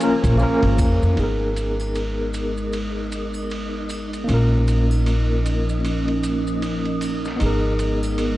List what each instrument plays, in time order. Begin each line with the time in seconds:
Already playing: ambient pad F3 C#4 A#4, synth texture G#4
0.00 tine electric piano A#3 C#4 F4 A#4, ride, maracas
0.24 upright bass A#1, kick, ride, maracas
0.38 tine electric piano A#3 C#4 F4, maracas
0.43 tine electric piano A#4
0.63 upright bass G#1, ride
0.78 upright bass F2, kick, ride, triangle, maracas
1.02 upright bass F2, maracas
1.13 upright bass G#1, tine electric piano B3 D#4, ride
1.18 ambient pad G#3 B3 A#4, synth texture D#4, tine electric piano G#4, maracas
1.23 tine electric piano A#4
1.56 ride, maracas
1.80 triangle, maracas
1.95 ride, maracas
2.34 ride, maracas
2.57 maracas
2.73 ride, maracas
3.12 ride, maracas
3.34 triangle, maracas
3.50 ride, maracas
3.89 ride, triangle, maracas
4.13 ride, maracas
4.24 tine electric piano A#3 C#4
4.28 upright bass A#1, ambient pad F3 C#4 A#4, tine electric piano F4, ride, maracas
4.34 tine electric piano A#4
4.68 ride, maracas
4.91 triangle, maracas
5.06 ride, maracas
5.46 ride, maracas
5.69 maracas
5.85 ride, maracas
6.08 ride
6.24 ride, maracas
6.47 maracas
6.62 ride, maracas
6.85 ride
7.01 ride, triangle, maracas
7.25 snare, maracas
7.36 tine electric piano B3 D#4, ride
7.40 upright bass G#1, ambient pad G#3 B3, tine electric piano G#4, maracas
7.46 tine electric piano A#4
7.79 ride, maracas
8.03 triangle, maracas
8.18 ride, maracas